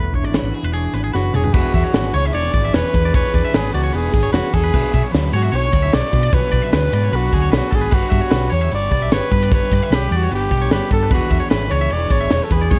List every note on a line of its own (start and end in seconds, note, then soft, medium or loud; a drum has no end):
0.00 0.23 E1 medium
0.00 3.13 E2 medium
0.00 0.12 A3 medium
0.00 0.15 B4 medium
0.00 0.92 B4 medium
0.13 0.71 D4 medium
0.13 0.24 C#5 medium
0.13 kick medium
0.13 closed hi-hat medium
0.23 0.39 G#1 medium
0.23 0.35 D5 medium
0.31 3.12 E3 medium
0.31 snare loud
0.31 closed hi-hat medium
0.35 0.54 B4 medium
0.42 0.51 G#1 medium
0.51 1.11 F#4 medium
0.51 0.64 G#4 medium
0.51 closed hi-hat medium
0.63 0.87 E1 medium
0.63 0.73 B4 medium
0.72 1.31 D4 medium
0.72 0.94 G#4 medium
0.72 closed hi-hat medium
0.92 1.12 G#1 medium
0.92 1.51 B4 medium
0.92 1.03 B4 medium
0.92 snare soft
0.92 closed hi-hat medium
1.04 1.13 G#4 medium
1.12 1.32 F#1 medium
1.12 1.51 F#4 medium
1.12 1.33 F#4 medium
1.12 1.34 B4 medium
1.12 snare medium
1.32 1.52 E1 medium
1.32 1.51 D4 medium
1.32 1.55 G#4 medium
1.32 1.44 C#5 medium
1.32 mid tom medium
1.44 1.53 B4 medium
1.44 floor tom medium
1.53 1.62 E1 medium
1.53 1.92 E3 medium
1.53 1.76 B3 medium
1.53 1.75 D4 medium
1.53 2.14 F#4 loud
1.53 1.73 G#4 medium
1.53 1.74 B4 loud
1.53 kick loud
1.53 crash loud
1.73 1.82 E2 medium
1.73 1.94 B3 medium
1.73 1.95 D4 medium
1.73 1.95 G#4 medium
1.73 1.84 E5 medium
1.73 kick medium
1.73 ride medium
1.84 1.94 C#5 medium
1.93 2.10 G#1 medium
1.93 2.33 E3 loud
1.93 2.17 B3 loud
1.93 2.15 D4 loud
1.93 2.14 G#4 loud
1.93 2.14 B4 medium
1.93 snare loud
1.93 ride loud
2.14 2.30 C#2 loud
2.14 2.34 B3 medium
2.14 2.35 D4 medium
2.14 2.35 G#4 medium
2.14 2.26 C#5 medium
2.14 2.24 C#5 loud
2.14 ride medium
2.26 2.34 E5 medium
2.33 2.50 E1 loud
2.33 2.56 E3 medium
2.33 2.55 B3 medium
2.33 2.54 D4 medium
2.33 2.52 G#4 medium
2.33 2.54 C#5 medium
2.33 2.76 D5 loud
2.33 ride loud
2.53 2.69 G#1 medium
2.53 2.72 E3 medium
2.53 2.74 B3 medium
2.53 2.74 D4 medium
2.53 2.75 G#4 medium
2.53 2.64 D5 medium
2.53 kick medium
2.53 ride medium
2.65 2.75 E5 medium
2.72 2.82 E1 medium
2.72 3.11 E3 medium
2.72 2.96 B3 medium
2.72 2.94 D4 medium
2.72 2.92 G#4 medium
2.72 3.14 B4 loud
2.72 2.95 C#5 medium
2.72 snare loud
2.72 ride loud
2.93 3.10 E2 loud
2.93 3.13 B3 medium
2.93 3.14 D4 medium
2.93 3.14 G#4 medium
2.93 3.04 B4 medium
2.93 kick medium
2.93 ride medium
3.05 3.14 D5 medium
3.12 3.22 E1 loud
3.12 3.51 E3 medium
3.12 3.35 B3 loud
3.12 3.34 D4 loud
3.12 3.31 G#4 loud
3.12 3.58 B4 loud
3.12 3.34 C#5 loud
3.12 kick loud
3.12 ride loud
3.32 3.42 E2 medium
3.32 3.52 B3 medium
3.32 3.54 D4 medium
3.32 3.54 G#4 medium
3.32 3.44 D5 medium
3.32 kick medium
3.32 ride medium
3.45 3.54 E5 medium
3.51 3.69 G#1 loud
3.51 3.92 E3 loud
3.51 3.76 B3 loud
3.51 3.74 D4 loud
3.51 3.72 G#4 loud
3.51 3.74 B4 medium
3.51 snare loud
3.51 ride loud
3.56 3.73 G#4 loud
3.73 3.90 C#2 medium
3.73 3.94 B3 medium
3.73 3.94 D4 medium
3.73 3.97 F#4 medium
3.73 3.95 G#4 medium
3.73 3.83 D5 medium
3.73 ride medium
3.84 3.93 C#5 medium
3.93 4.09 E1 loud
3.93 4.16 E3 medium
3.93 4.15 B3 medium
3.93 4.14 D4 medium
3.93 4.33 G#4 loud
3.93 4.12 G#4 medium
3.93 4.13 B4 medium
3.93 ride loud
4.13 4.29 G#1 medium
4.13 4.32 E3 medium
4.13 4.33 B3 medium
4.13 4.34 D4 medium
4.13 4.34 G#4 loud
4.13 4.23 G#4 medium
4.13 kick loud
4.13 ride medium
4.23 4.32 C#5 medium
4.32 4.40 E1 loud
4.32 4.72 E3 medium
4.32 4.55 B3 medium
4.32 4.53 D4 medium
4.32 4.55 F#4 loud
4.32 4.51 G#4 medium
4.32 4.53 B4 medium
4.32 snare loud
4.32 ride loud
4.52 4.69 E2 medium
4.52 4.73 B3 medium
4.52 4.73 D4 medium
4.52 4.71 G#4 medium
4.52 5.06 G#4 loud
4.52 4.63 A4 medium
4.52 kick medium
4.52 ride medium
4.64 4.73 B4 medium
4.71 4.81 B1 loud
4.71 5.10 B2 medium
4.71 5.11 F#3 medium
4.71 4.94 B3 loud
4.71 4.93 D4 loud
4.71 4.91 F#4 loud
4.71 4.93 B4 loud
4.71 kick loud
4.71 crash loud
4.91 5.01 B2 medium
4.91 5.12 B3 medium
4.91 5.13 D4 medium
4.91 5.14 F#4 medium
4.91 5.03 E5 medium
4.91 kick medium
4.91 ride medium
5.03 5.12 C#5 medium
5.11 5.29 D2 loud
5.11 5.74 B2 loud
5.11 5.50 F#3 loud
5.11 5.34 B3 loud
5.11 5.33 D4 loud
5.11 5.31 F#4 loud
5.11 5.32 B4 medium
5.11 snare loud
5.11 ride medium
5.32 5.48 G#2 loud
5.32 5.52 B3 medium
5.32 5.53 D4 medium
5.32 5.54 F#4 medium
5.32 5.57 F#4 loud
5.32 5.42 C#5 loud
5.32 ride medium
5.42 5.52 E5 medium
5.51 5.68 B1 medium
5.51 5.73 F#3 medium
5.51 5.72 B3 medium
5.51 5.71 D4 medium
5.51 5.70 F#4 medium
5.51 5.73 C#5 medium
5.51 ride loud
5.56 5.96 C#5 loud
5.71 5.88 D2 medium
5.71 6.13 B2 medium
5.71 5.91 F#3 medium
5.71 5.92 B3 medium
5.71 5.93 D4 medium
5.71 5.94 F#4 medium
5.71 5.82 D5 medium
5.71 kick medium
5.71 ride medium
5.82 5.93 E5 medium
5.91 6.01 B1 loud
5.91 6.31 F#3 medium
5.91 6.14 B3 medium
5.91 6.13 D4 medium
5.91 6.11 F#4 medium
5.91 6.12 C#5 medium
5.91 6.36 D5 loud
5.91 snare loud
5.91 ride loud
6.12 6.28 B2 medium
6.12 6.32 B3 medium
6.12 6.33 D4 medium
6.12 6.34 F#4 medium
6.12 6.23 B4 medium
6.12 kick medium
6.12 ride medium
6.23 6.32 D5 medium
6.31 6.40 B1 loud
6.31 6.71 B2 loud
6.31 6.73 F#3 medium
6.31 6.54 B3 loud
6.31 6.53 D4 medium
6.31 6.51 F#4 loud
6.31 6.73 B4 loud
6.31 6.51 C#5 loud
6.31 kick loud
6.31 ride loud
6.51 6.60 B2 medium
6.51 6.74 B3 medium
6.51 6.74 D4 medium
6.51 6.75 F#4 medium
6.51 6.62 D5 medium
6.51 kick medium
6.51 ride medium
6.62 6.72 E5 medium
6.72 6.88 D2 medium
6.72 7.12 B2 medium
6.72 7.11 F#3 loud
6.72 6.95 B3 loud
6.72 6.93 D4 loud
6.72 6.91 F#4 loud
6.72 6.93 B4 medium
6.72 7.17 B4 loud
6.72 snare loud
6.72 ride loud
6.92 7.08 G#2 medium
6.92 7.13 B3 medium
6.92 7.14 D4 medium
6.92 7.15 F#4 medium
6.92 7.04 D5 medium
6.92 ride medium
7.04 7.13 C#5 medium
7.11 7.28 B1 medium
7.11 7.34 F#3 medium
7.11 7.34 B3 medium
7.11 7.33 D4 medium
7.11 7.32 F#4 medium
7.11 7.32 B4 medium
7.11 ride loud
7.16 7.54 F#4 medium
7.32 7.48 D2 medium
7.32 7.73 B2 medium
7.32 7.51 F#3 medium
7.32 7.53 B3 medium
7.32 7.53 D4 medium
7.32 7.54 F#4 medium
7.32 7.42 G#4 medium
7.32 kick medium
7.32 ride medium
7.42 7.51 C#5 medium
7.51 7.60 B1 medium
7.51 7.90 F#3 medium
7.51 7.75 B3 medium
7.51 7.73 D4 medium
7.51 7.71 F#4 medium
7.51 7.72 B4 medium
7.51 snare loud
7.51 ride loud
7.56 7.76 F#4 medium
7.71 7.88 G#1 medium
7.71 7.93 D4 medium
7.71 7.94 F#4 medium
7.71 7.81 A4 medium
7.71 kick loud
7.71 ride medium
7.75 7.92 B3 medium
7.75 7.95 G#4 medium
7.81 7.90 B4 medium
7.91 8.00 G1 medium
7.91 8.31 G3 medium
7.91 8.14 B3 medium
7.91 8.12 D4 medium
7.91 8.52 F#4 loud
7.91 8.10 G4 loud
7.91 8.10 B4 loud
7.91 kick loud
7.91 crash loud
8.10 8.19 G2 medium
8.10 8.32 B3 medium
8.10 8.33 D4 medium
8.10 8.34 G4 medium
8.10 8.21 E5 medium
8.10 kick medium
8.10 ride medium
8.21 8.31 C#5 medium
8.31 8.47 B1 medium
8.31 8.71 G3 medium
8.31 8.54 B3 loud
8.31 8.52 D4 loud
8.31 8.50 G4 loud
8.31 8.51 B4 medium
8.31 snare loud
8.31 ride loud
8.50 8.68 E2 loud
8.50 8.73 D4 medium
8.50 8.73 G4 medium
8.50 8.61 C#5 medium
8.50 8.71 C#5 loud
8.50 ride medium
8.54 8.72 B3 medium
8.61 8.71 E5 medium
8.71 8.88 G1 medium
8.71 8.94 G3 medium
8.71 8.93 B3 medium
8.71 8.92 D4 medium
8.71 8.90 G4 medium
8.71 8.91 C#5 medium
8.71 9.15 D5 loud
8.71 ride loud
8.91 9.07 B1 medium
8.91 9.10 G3 medium
8.91 9.11 B3 medium
8.91 9.13 D4 medium
8.91 9.13 G4 medium
8.91 9.02 D5 medium
8.91 kick medium
8.91 ride medium
9.02 9.12 E5 medium
9.11 9.19 G1 medium
9.11 9.48 G3 medium
9.11 9.33 B3 medium
9.11 9.32 D4 medium
9.11 9.29 G4 medium
9.11 9.52 B4 loud
9.11 9.32 C#5 medium
9.11 snare loud
9.11 ride loud
9.30 9.47 G2 loud
9.30 9.51 B3 medium
9.30 9.52 D4 medium
9.30 9.52 G4 medium
9.30 9.43 B4 medium
9.30 kick loud
9.30 ride medium
9.43 9.53 D5 medium
9.50 9.59 G1 medium
9.50 9.89 G3 medium
9.50 9.73 B3 medium
9.50 9.71 D4 medium
9.50 9.69 G4 loud
9.50 9.73 C#5 loud
9.50 kick loud
9.50 ride loud
9.54 9.96 B4 loud
9.70 9.79 G2 medium
9.70 9.91 B3 medium
9.70 9.92 D4 medium
9.70 9.92 G4 medium
9.70 9.83 D5 medium
9.70 kick medium
9.70 ride medium
9.83 9.92 E5 medium
9.90 10.06 B1 medium
9.90 10.29 G3 loud
9.90 10.12 B3 loud
9.90 10.11 D4 medium
9.90 10.08 G4 loud
9.90 10.12 B4 medium
9.90 snare loud
9.90 ride loud
9.94 10.18 G4 loud
10.10 10.27 E2 loud
10.10 10.31 B3 medium
10.10 10.32 D4 medium
10.10 10.32 G4 medium
10.10 10.23 D5 medium
10.10 ride medium
10.16 10.34 F#4 medium
10.23 10.31 C#5 medium
10.30 10.47 G1 medium
10.30 10.52 G3 medium
10.30 10.51 B3 medium
10.30 10.51 D4 medium
10.30 10.49 G4 medium
10.30 10.51 B4 medium
10.30 ride loud
10.35 10.70 G4 medium
10.50 10.67 B1 medium
10.50 10.68 G3 medium
10.50 10.71 B3 medium
10.50 10.71 D4 medium
10.50 10.72 G4 medium
10.50 10.62 G4 medium
10.50 kick medium
10.50 ride medium
10.62 10.72 C#5 medium
10.69 10.79 G1 loud
10.69 11.09 G3 medium
10.69 10.93 B3 medium
10.69 10.92 D4 medium
10.69 10.88 G4 medium
10.69 10.92 B4 medium
10.69 snare loud
10.69 ride loud
10.74 10.91 G4 medium
10.90 11.07 G2 medium
10.90 11.10 B3 medium
10.90 11.11 D4 medium
10.90 11.09 G4 medium
10.90 11.03 A4 medium
10.90 11.11 A4 loud
10.90 kick loud
10.90 ride medium
11.03 11.10 B4 medium
11.10 11.19 E1 loud
11.10 11.49 E3 medium
11.10 11.32 B3 medium
11.10 11.30 D4 loud
11.10 11.28 G#4 medium
11.10 11.31 B4 loud
11.10 kick loud
11.10 crash loud
11.14 11.44 F#4 medium
11.29 11.39 E2 medium
11.29 11.51 B3 medium
11.29 11.51 D4 medium
11.29 11.52 G#4 medium
11.29 11.40 E5 medium
11.29 kick medium
11.29 ride medium
11.40 11.50 C#5 medium
11.49 11.67 G#1 medium
11.49 11.89 E3 medium
11.49 11.73 B3 loud
11.49 11.72 D4 loud
11.49 11.70 G#4 loud
11.49 11.71 B4 medium
11.49 snare loud
11.49 ride loud
11.70 11.87 C#2 loud
11.70 11.90 B3 medium
11.70 11.91 D4 medium
11.70 11.93 G#4 medium
11.70 11.94 C#5 loud
11.70 11.81 C#5 loud
11.70 ride medium
11.81 11.91 E5 medium
11.90 12.07 E1 medium
11.90 12.13 E3 medium
11.90 12.11 B3 medium
11.90 12.10 D4 medium
11.90 12.09 G#4 medium
11.90 12.10 C#5 medium
11.90 12.13 D5 loud
11.90 ride loud
12.10 12.27 G#1 medium
12.10 12.30 E3 medium
12.10 12.30 B3 medium
12.10 12.31 D4 medium
12.10 12.33 G#4 medium
12.10 12.46 C#5 loud
12.10 12.20 D5 medium
12.10 kick medium
12.10 ride medium
12.21 12.32 E5 medium
12.30 12.39 E1 medium
12.30 12.69 E3 medium
12.30 12.52 B3 medium
12.30 12.50 D4 medium
12.30 12.49 G#4 medium
12.30 12.52 C#5 medium
12.30 snare loud
12.30 ride loud
12.44 12.54 A4 medium
12.49 12.67 E2 medium
12.49 12.69 B3 medium
12.49 12.70 D4 medium
12.49 12.71 G#4 medium
12.49 12.79 G#4 medium
12.49 12.62 B4 medium
12.49 kick medium
12.49 ride medium
12.62 12.70 D5 medium
12.69 12.79 E1 loud
12.69 12.79 E3 medium
12.69 12.79 B3 loud
12.69 12.79 D4 medium
12.69 12.79 G#4 loud
12.69 12.79 C#5 loud
12.69 kick loud
12.69 high tom medium